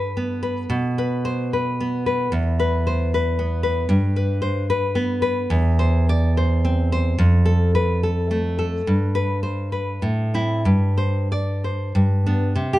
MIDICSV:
0, 0, Header, 1, 2, 480
1, 0, Start_track
1, 0, Key_signature, 1, "major"
1, 0, Tempo, 541516
1, 613, Time_signature, 3, 2, 24, 8
1, 2053, Tempo, 524017
1, 4453, Tempo, 557621
1, 4928, Key_signature, 0, "major"
1, 7813, Tempo, 580271
1, 8773, Tempo, 649351
1, 10213, Tempo, 588813
1, 10899, End_track
2, 0, Start_track
2, 0, Title_t, "Nylon-string guitar"
2, 0, Program_c, 0, 24
2, 0, Note_on_c, 0, 43, 58
2, 0, Note_on_c, 0, 71, 45
2, 149, Note_on_c, 0, 59, 45
2, 367, Note_off_c, 0, 71, 0
2, 378, Note_on_c, 0, 71, 44
2, 571, Note_off_c, 0, 43, 0
2, 616, Note_off_c, 0, 71, 0
2, 617, Note_on_c, 0, 47, 61
2, 622, Note_off_c, 0, 59, 0
2, 871, Note_on_c, 0, 71, 53
2, 1107, Note_on_c, 0, 72, 53
2, 1341, Note_off_c, 0, 72, 0
2, 1348, Note_off_c, 0, 71, 0
2, 1358, Note_on_c, 0, 71, 41
2, 1599, Note_on_c, 0, 59, 47
2, 1818, Note_off_c, 0, 71, 0
2, 1829, Note_on_c, 0, 71, 44
2, 2020, Note_off_c, 0, 47, 0
2, 2055, Note_on_c, 0, 40, 60
2, 2061, Note_off_c, 0, 71, 0
2, 2066, Note_off_c, 0, 59, 0
2, 2309, Note_on_c, 0, 71, 54
2, 2558, Note_on_c, 0, 72, 51
2, 2787, Note_off_c, 0, 72, 0
2, 2798, Note_off_c, 0, 71, 0
2, 2809, Note_on_c, 0, 71, 46
2, 3035, Note_on_c, 0, 59, 46
2, 3247, Note_off_c, 0, 71, 0
2, 3258, Note_on_c, 0, 71, 49
2, 3453, Note_off_c, 0, 40, 0
2, 3492, Note_off_c, 0, 71, 0
2, 3493, Note_on_c, 0, 43, 67
2, 3499, Note_off_c, 0, 59, 0
2, 3745, Note_on_c, 0, 71, 51
2, 3977, Note_on_c, 0, 72, 51
2, 4214, Note_off_c, 0, 72, 0
2, 4224, Note_off_c, 0, 71, 0
2, 4235, Note_on_c, 0, 71, 53
2, 4467, Note_on_c, 0, 59, 54
2, 4687, Note_off_c, 0, 71, 0
2, 4697, Note_on_c, 0, 71, 56
2, 4896, Note_off_c, 0, 43, 0
2, 4933, Note_off_c, 0, 71, 0
2, 4934, Note_off_c, 0, 59, 0
2, 4939, Note_on_c, 0, 40, 73
2, 5188, Note_on_c, 0, 72, 55
2, 5445, Note_off_c, 0, 72, 0
2, 5448, Note_on_c, 0, 74, 55
2, 5684, Note_off_c, 0, 74, 0
2, 5690, Note_on_c, 0, 72, 49
2, 5925, Note_on_c, 0, 60, 49
2, 6153, Note_off_c, 0, 72, 0
2, 6164, Note_on_c, 0, 72, 55
2, 6351, Note_off_c, 0, 40, 0
2, 6386, Note_off_c, 0, 60, 0
2, 6388, Note_off_c, 0, 72, 0
2, 6389, Note_on_c, 0, 41, 64
2, 6621, Note_on_c, 0, 69, 54
2, 6870, Note_off_c, 0, 69, 0
2, 6874, Note_on_c, 0, 71, 51
2, 7104, Note_off_c, 0, 71, 0
2, 7119, Note_on_c, 0, 69, 46
2, 7355, Note_on_c, 0, 57, 48
2, 7585, Note_off_c, 0, 69, 0
2, 7595, Note_on_c, 0, 69, 49
2, 7785, Note_off_c, 0, 41, 0
2, 7825, Note_off_c, 0, 57, 0
2, 7825, Note_off_c, 0, 69, 0
2, 7841, Note_on_c, 0, 43, 61
2, 8069, Note_on_c, 0, 71, 53
2, 8297, Note_off_c, 0, 71, 0
2, 8300, Note_on_c, 0, 72, 46
2, 8533, Note_off_c, 0, 72, 0
2, 8543, Note_on_c, 0, 71, 40
2, 8759, Note_off_c, 0, 43, 0
2, 8782, Note_off_c, 0, 71, 0
2, 8789, Note_on_c, 0, 45, 51
2, 9025, Note_on_c, 0, 60, 37
2, 9029, Note_on_c, 0, 64, 57
2, 9236, Note_off_c, 0, 60, 0
2, 9239, Note_off_c, 0, 64, 0
2, 9245, Note_off_c, 0, 45, 0
2, 9256, Note_on_c, 0, 43, 60
2, 9494, Note_on_c, 0, 72, 47
2, 9744, Note_off_c, 0, 72, 0
2, 9747, Note_on_c, 0, 74, 45
2, 9984, Note_off_c, 0, 74, 0
2, 9987, Note_on_c, 0, 72, 36
2, 10187, Note_off_c, 0, 43, 0
2, 10214, Note_on_c, 0, 43, 55
2, 10219, Note_off_c, 0, 72, 0
2, 10471, Note_on_c, 0, 62, 53
2, 10472, Note_on_c, 0, 59, 37
2, 10683, Note_off_c, 0, 62, 0
2, 10684, Note_off_c, 0, 59, 0
2, 10690, Note_off_c, 0, 43, 0
2, 10708, Note_on_c, 0, 48, 60
2, 10853, Note_on_c, 0, 67, 61
2, 10899, Note_off_c, 0, 48, 0
2, 10899, Note_off_c, 0, 67, 0
2, 10899, End_track
0, 0, End_of_file